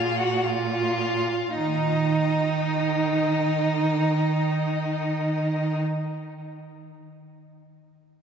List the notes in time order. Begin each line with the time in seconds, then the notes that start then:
Already playing: A#2 F4 F5
0.17 F#4 F#5
0.44 F4 F5
1.55 D#3 D#4 D#5